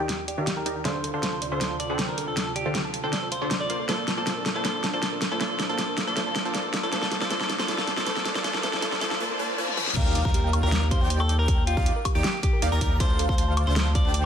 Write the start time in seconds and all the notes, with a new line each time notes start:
Already playing: D#2 G4
0.00 G4 G5
0.09 G5, snare, closed hi-hat
0.19 G5
0.28 G4 D5, closed hi-hat
0.38 D#3 D#4 G4 A#4 D5 F5
0.47 G4, snare, closed hi-hat
0.57 A#4 G5
0.66 D#3 D#4 G4 D5 G5 A#5, closed hi-hat
0.76 G5
0.85 D2 C3 D3 D4 F4 A4 C5 D5 F5, snare, closed hi-hat
0.95 C5
1.04 A4, closed hi-hat
1.14 D3 D4 A4 C5 F5 A5
1.23 A5, snare, closed hi-hat
1.33 A5
1.42 D5, closed hi-hat
1.52 D3 D4 A4 C5 F5
1.61 A4, snare, closed hi-hat
1.71 A5
1.80 D5 A5, closed hi-hat
1.90 D3 D4 A4 C5 G5 A5
1.99 D5, snare, closed hi-hat
2.09 A#4 C5
2.18 A4, closed hi-hat
2.28 A4 A5
2.37 A5, snare, closed hi-hat
2.47 A5
2.56 G4 D5, closed hi-hat
2.66 D3 D4 A4 C5 F5
2.75 A4, snare, closed hi-hat
2.85 A5
2.94 A5, closed hi-hat
3.04 D3 D4 A4 C5 G5 A5
3.13 D5, snare, closed hi-hat
3.23 C5
3.32 C5 F5, closed hi-hat
3.42 D3 D4 A4 C5 D5 A5
3.51 A5, snare, closed hi-hat
3.61 D5
3.70 A#2 A#3 D4 F4 A4 C5 D5 F5 C6, closed hi-hat
3.80 A4
3.89 A#3 F4 A4 C5 D5 A5, snare, closed hi-hat, riser
3.99 A5
4.08 A5, snare, closed hi-hat
4.17 A#3 F4 A4 C5 D5 A5
4.27 D6, snare, closed hi-hat
4.37 A#4
4.46 A4, snare, closed hi-hat
4.55 A#3 F4 A4 C5 D5 A5
4.65 A#3 F4 A4 C5 D5 A5, snare, closed hi-hat
4.75 A5
4.84 A5, snare, closed hi-hat
4.93 A#3 F4 A4 C5 D5 A5
5.03 D6, snare, closed hi-hat
5.12 A#4
5.22 A4, snare, closed hi-hat
5.31 A#3 F4 A4 C5 D5 A5
5.41 A#3 F4 A4 C5 D5 A5, snare, closed hi-hat
5.51 A5
5.60 A5, snare, closed hi-hat
5.69 A#3 F4 A4 C5 D5 A5
5.79 D6, snare, closed hi-hat
5.89 A#4
5.98 A4, snare, closed hi-hat
6.07 A#3 F4 A4 C5 D5 A5
6.16 A#3 F4 A4 C5 D5 A5, snare, closed hi-hat
6.27 A5
6.36 snare, closed hi-hat
6.45 A#3 F4 A4 C5 D5 A5
6.55 D6, snare, closed hi-hat
6.65 A#4
6.74 A4, snare, closed hi-hat
6.83 A#3 F4 A4 C5 D5 A5
6.92 C3 A#3 D#4 F4 A4 C5 D5 A5, snare, closed hi-hat
7.02 A5, snare
7.11 A5, snare, closed hi-hat
7.21 A#3 F4 A4 C5 D5 A5, snare
7.30 A#3 F4 A4 C5 D5 A5, snare, closed hi-hat
7.40 A5, snare
7.50 A5, snare, closed hi-hat
7.59 A#3 F4 A4 C5 D5 A5, snare
7.68 A#3 F4 A4 C5 D5 A5, snare, closed hi-hat
7.78 A5, snare
7.87 A5, snare, closed hi-hat
7.97 A#3 F4 A4 C5 D5 A5, snare
8.06 A#3 F4 A4 C5 D5 A5, snare, closed hi-hat
8.16 A5, snare
8.25 A5, snare, closed hi-hat
8.35 A#3 F4 A4 C5 D5 A5, snare
8.44 A#3 F4 A4 C5 D5 A5, snare, closed hi-hat
8.54 A5, snare
8.63 A#3 F4 A4 C5 D5 A5, snare, closed hi-hat
8.73 A5, snare
8.82 A#3 F4 A4 C5 D5 A5, snare, closed hi-hat
8.92 A5, snare
9.01 A#3 F4 A4 C5 D5 A5, snare, closed hi-hat
9.11 A5, snare
9.20 A#3 F4 C5 D5 A5, reverse cymbal
9.39 A#3 F4 C5 D5 A5
9.58 A#3 F4 C5 D5 A5
9.68 high tom
9.77 A#3 F4 C5 D5 A5, mid tom
9.87 snare
9.96 D#2 D#3 D#4 G4 A#4 D5 F5 G5, kick, closed hi-hat, crash, ride, impact
10.06 G5
10.15 D6, closed hi-hat
10.25 D#2 D#3 D#4 G4 A#4 D5 F5, kick
10.34 G4, closed hi-hat
10.44 G5
10.53 G5, closed hi-hat, high woodblock
10.63 D#2 D#3 D#4 G4 A#4 D5 F5 G5
10.72 D6, snare, closed hi-hat
10.82 A#4
10.91 G4 C5, kick, closed hi-hat
11.01 D#2 D#3 D#4 G4 D5 G5
11.10 G5, closed hi-hat
11.20 A4 G5, high woodblock
11.29 D6, closed hi-hat
11.39 A#4
11.48 G4, kick, closed hi-hat, ride
11.58 G5
11.67 F4 G5, closed hi-hat
11.77 D#2 D#3 D#4 G4 D5 F5, kick
11.86 D6, closed hi-hat
11.96 A#4
12.05 G4, kick, closed hi-hat, high woodblock
12.15 D#2 D#3 D#4 G4 D5 G5
12.24 G5, snare, closed hi-hat
12.34 G5
12.43 G4 D6, kick, closed hi-hat
12.53 A#4
12.62 D#2 D#3 D#4 G4 D5 F5, closed hi-hat
12.72 D#2 D#3 D#4 G4 A#4 D5 G5 A#5
12.81 D#2 D#3 D#4 G4 D5 A#5, kick, closed hi-hat
12.91 G5
13.00 D2 D3 D4 A4 C5 F5 D6, kick, closed hi-hat, ride
13.10 C5
13.19 A4, closed hi-hat
13.29 D2 D3 D4 A4 C5 F5 A5, kick
13.38 A5, closed hi-hat
13.48 A5
13.57 D6, closed hi-hat, high woodblock
13.67 D2 D3 D4 A4 C5 F5
13.76 A4, snare, closed hi-hat
13.86 A5
13.95 D5, kick, closed hi-hat
14.05 D2 D3 D4 A4 C5 G5 A5
14.14 D6, closed hi-hat